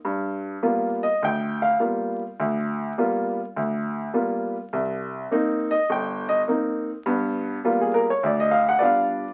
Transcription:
upright piano
0.05 G2
0.63 G3 A#3 B3 F4
1.03 D#5
1.22 D2 G5
1.62 F5
1.80 G3 A#3 B3 F4
2.40 D2
2.98 G3 A#3 B3 F4
3.56 D2
4.14 G3 A#3 B3 F4
4.73 C2
5.31 A#3 C4 D#4
5.71 D#5
5.90 G1 G5
6.29 D#5
6.48 A#3 C4 D#4
7.06 G2 B3
7.65 G3 A#3 B3 F4
7.81 G#4
7.94 A#4
8.10 C#5
8.23 D2 D5
8.40 D#5
8.51 F5
8.69 F#5
8.79 G3 B3 D4 F4 B4 D5
8.83 F5

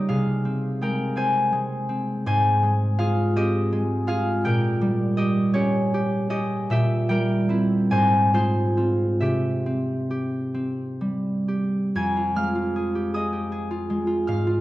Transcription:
harp
Already playing: C#3 G3 A#3 C#4 D#4 G4 A#4 C#5 D#5 G5
0.09 C3 G#4 F5
0.45 C4
0.81 G#3 A#4 G5
1.16 C4 C5 G#5
1.53 G#3
1.89 C4
2.26 G#2 C5 G#5
2.63 G#3
2.99 F4 G#4 F5
3.36 C4 G4 D#5
3.73 G#3
4.07 F4 G#4 F5
4.45 A#2 A#4 G5
4.81 G3
5.17 G4 D#5
5.54 C#4 G4 C#5
5.94 G4
6.30 C#4 G4 D#5
6.70 A#2 G4 E5
7.09 G3 A#4 G5
7.49 C4 E4
7.91 G#2 C5 G#5
8.34 G#3 F4 C5
8.77 C4 F4
9.20 C3 G4 E5
9.66 C4
10.11 G4
10.54 C4
11.01 G3
11.48 G4
11.95 F2 G#5 G#6
12.17 F4
12.36 G#3 F5 F6
12.55 F4
12.76 G#4
12.95 G4
13.14 G#4 D#5 D#6
13.33 G4
13.52 G#4
13.71 F4
13.90 G#3
14.07 F4
14.27 G#2 F5 F6
14.47 F4

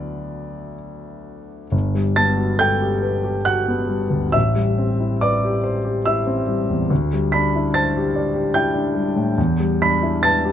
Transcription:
grand piano
Already playing: D2 F#3 B3 E4 A4 D5
1.72 G1
1.95 G3
2.16 B3 A5 A6
2.37 F#4
2.59 A4 G5 G6
2.82 G4
3.02 B4
3.24 G4
3.45 F#4 F#5 F#6
3.68 B3
3.88 G3
4.10 D2
4.32 A1 E5 E6
4.56 G3
4.78 C4
5.00 E4
5.21 B4 D5 D6
5.44 G4
5.64 C5
5.85 G4
6.06 E4 E5 E6
6.27 C4
6.48 G3
6.70 E2
6.90 D2
7.13 G3
7.32 D4 B5 B6
7.56 E4
7.74 C5 A5 A6
7.97 G4
8.16 D5
8.34 G4
8.54 E4 G5 G6
8.74 D4
8.95 G3
9.16 A2
9.38 E2
9.60 G3
9.82 D4 B5 B6
10.03 E4
10.23 B4 A5 A6
10.45 G4

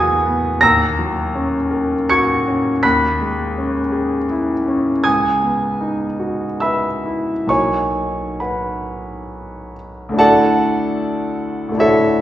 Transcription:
grand piano
Already playing: E2 F#3 B3 F#4 G#4 E5 F#5 G#5 B5 C#6 D#6 E6 F#6 G#6
0.26 B3
0.61 D#2 A#5 E6 A#6
0.99 F#3
1.35 C#4
1.71 A#4
2.10 F#4 C#6 G#6 C#7
2.48 C#4
2.83 D#2 B5 F#6 B6
3.21 G#3
3.58 C#4
3.92 G#4
4.30 E4
4.68 C#4
5.04 C#2 G#5 D#6 G#6
5.43 B3
5.81 D#4
6.20 F#4
6.60 B4 E5 B5 E6
7.06 E4
7.47 B1 A#3 D#4 C#5 G#5 C#6
7.51 F#4
8.40 B4 F#5 B5
10.09 D2 A3
10.14 D4 E4 F#4
10.19 A4 D5 F#5 A5
11.69 D2 A3
11.75 D4 E4
11.79 F#4 A4 C#5 E5

